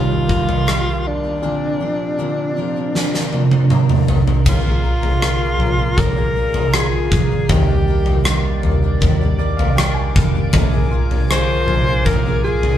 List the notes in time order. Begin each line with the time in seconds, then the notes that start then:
Already playing: D#2 A#2 D#3 G3 A#3 D#4 F4
0.10 A#3 D#4 G4
0.27 F3 A#3, kick
0.31 D#4 G4
0.48 A#3 D#4 G4, floor tom
0.67 D#3 F3 A#3 D#4 G4, cross-stick
1.07 D4
1.23 A#3 D#4 G4
1.42 A#2 C3 D3 F3 A#3 C4 D4 A#4
1.80 F3 C4 D4 A#4
2.18 A#2 D3 F3 C4 D4 A#4
2.56 F3 C4 D4 A#4
2.76 F3 C4 D4 A#4
2.94 A#2, snare
3.14 F3 C4 D4 A#4, snare
3.32 F3 C4 D4 A#4, high tom
3.51 F3 C4 D4 A#4, high tom
3.70 A#2 D3 F3 C4 D4 A#4, mid tom
3.89 mid tom
4.08 floor tom
4.28 F3 C4 D4 A#4, floor tom
4.46 A#1 A#2 D3 F3 A#3 F4 G#4 D5 A#5, kick, floor tom, crash
4.65 F3 A#3 F4 G#4
4.84 F3 A#3 F4 G#4
5.02 F3 A#3 F4 G#4, floor tom
5.21 A#2 D3 F3 A#3 F4 G#4, cross-stick
5.59 A#1 A#3, floor tom
5.79 F3 A#3 F4 G#4
5.98 A#1 A#3 A#4, kick, floor tom
6.16 F3 A#3 F4 G#4
6.36 F3 A#3 F4 G#4
6.54 F3 A#3 F4 G#4, floor tom
6.73 A#2 D3 F3 A#3 F4 G#4, cross-stick
7.11 A#1 F3 A#3 F4 G#4, kick
7.31 F3 A#3 F4 G#4
7.49 D#2 D#3 G3 A#3 D4 G4 D5 D6, kick, floor tom
7.69 A#3 D4 G4
7.88 G3 A#3 D4 G4
8.06 A#3 D4 G4, floor tom
8.25 D#3 G3 A#3 D4 G4, cross-stick
8.63 D#2 A#3, floor tom
8.82 A#3 D4 G4
9.01 D#2 D#3, kick, floor tom
9.21 A#3 D4 G4
9.39 G3 A#3 D4 G4 D5
9.57 A#3 D4 G4 F5, floor tom
9.75 D#3 G3 A#3 D4 G5, cross-stick
9.79 G4
9.94 G#5
10.15 F1 G3 A#3 D4 G4, kick
10.35 A#3 D4 G4
10.52 A#1 A#2 D3 F3 A#3 D4 G#4 A#4 G#5, kick, floor tom
10.73 F3 A#3 D4 G#4
10.91 F3 A#3 D4 F4 G#4
11.11 F3 A#3 D4 G#4, floor tom
11.30 A#2 D3 F3 A#3 D4 G#4 C5, cross-stick
11.66 A#1 F4, floor tom
11.87 F3 A#3 D4 G#4
12.05 A#1 A#3 A#4, kick, floor tom
12.26 F3 A#3 D4 G#4
12.44 F3 A#3 D4 F4 G#4
12.63 F3 A#3 D4 G#4, floor tom